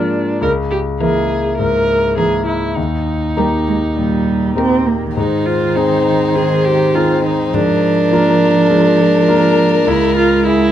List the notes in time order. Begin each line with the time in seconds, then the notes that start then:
Already playing: G#2 F3 G#3 A#3 D4 F4 A#4
0.41 C#2 A#4
0.71 G4
1.00 E3 A#3 E4 G#4 A#4
1.58 G#2 A#4
2.16 E3 A#3 E4 G#4 A#4
2.46 E4
2.76 D#2 D#4
3.36 G3 A#3 D#4 G4 A#4
3.67 G#3
3.96 A#2 G3
4.56 A#3 C4 D#4 G4 A#4
4.87 A#3
5.16 G#2 D#3 D#4 C5
5.46 F4
5.76 C4 D#4 G#4
6.35 D#3 G#4
6.65 G4
6.95 C4 D#4 F4 G#4
7.24 D#4
7.54 G#2 F3 D4 A#4
8.12 A#3 F4 A#4
8.70 G#3
9.28 A#3 F4 A#4
9.87 C#2 G#3 E4
10.16 F4
10.46 E4 G#4